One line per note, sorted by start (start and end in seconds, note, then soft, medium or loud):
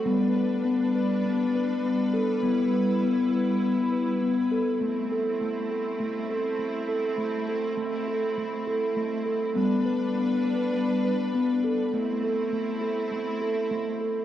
0.05 2.39 G3 medium
0.05 4.77 G3 medium
0.05 0.35 B3 medium
0.05 2.41 D4 medium
0.05 4.77 B4 medium
0.36 0.65 B4 medium
0.65 0.95 B3 medium
0.96 1.25 B4 medium
1.25 1.55 B3 medium
1.55 1.84 B4 medium
1.85 2.14 B3 medium
2.14 2.43 A4 medium
2.42 4.77 G3 medium
2.42 2.73 B3 medium
2.42 4.78 E4 medium
2.74 3.03 B4 medium
3.03 3.33 B3 medium
3.32 3.62 B4 medium
3.62 3.92 B3 medium
3.92 4.22 B4 medium
4.23 4.52 B3 medium
4.52 4.81 A4 medium
4.80 9.52 A3 medium
4.80 5.40 A3 medium
4.80 9.52 C4 medium
4.80 9.52 E4 medium
5.12 5.41 A4 medium
5.41 5.71 A3 medium
5.71 6.00 A4 medium
6.00 6.30 A3 medium
6.29 6.59 A4 medium
6.59 6.89 A3 medium
6.89 7.19 A4 medium
7.18 7.76 A3 medium
7.48 7.78 A4 medium
7.77 8.07 A3 medium
8.08 8.38 A4 medium
8.38 8.67 A3 medium
8.67 8.97 A4 medium
8.97 9.27 A3 medium
9.26 9.56 A4 medium
9.55 11.90 G3 medium
9.55 11.92 G3 medium
9.55 9.86 B3 medium
9.55 11.92 D4 medium
9.55 11.92 B4 medium
9.86 10.16 B4 medium
10.15 10.45 B3 medium
10.45 10.75 B4 medium
10.74 11.05 B3 medium
11.05 11.35 B4 medium
11.35 11.64 B3 medium
11.64 11.94 A4 medium
11.94 12.23 A3 medium
11.94 14.25 A3 medium
11.94 14.25 C4 medium
11.94 14.25 E4 medium
12.24 12.53 A4 medium
12.53 12.83 A3 medium
12.81 13.12 A4 medium
13.12 13.42 A3 medium
13.41 13.71 A4 medium
13.71 14.01 A3 medium
14.01 14.25 A4 medium